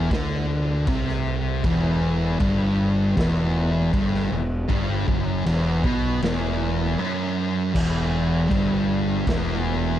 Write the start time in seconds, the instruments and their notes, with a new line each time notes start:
0.11 fingered electric bass D2, distorted electric guitar D3, kick, snare, crash
0.87 fingered electric bass C2, distorted electric guitar C3, kick, crash
1.09 snare
1.64 fingered electric bass E1, distorted electric guitar E2, kick, crash
2.40 fingered electric bass G1, distorted electric guitar G2, kick, crash
3.17 fingered electric bass E1, distorted electric guitar E2, kick, snare, crash
3.93 fingered electric bass G1, distorted electric guitar G2, kick, crash
4.14 snare
4.32 fingered electric bass E1, distorted electric guitar E2
4.68 fingered electric bass G1, distorted electric guitar G2, kick, crash
5.08 fingered electric bass F#1, distorted electric guitar F#2, kick
5.46 fingered electric bass E1, distorted electric guitar E2, crash
5.84 fingered electric bass B1, distorted electric guitar B2, kick
6.22 fingered electric bass E1, distorted electric guitar E2, snare, crash
6.99 distorted electric guitar F#2
7.74 fingered electric bass E1, distorted electric guitar E2, kick, crash
8.50 fingered electric bass G1, distorted electric guitar G2, kick, crash
9.27 fingered electric bass E1, distorted electric guitar E2, kick, snare, crash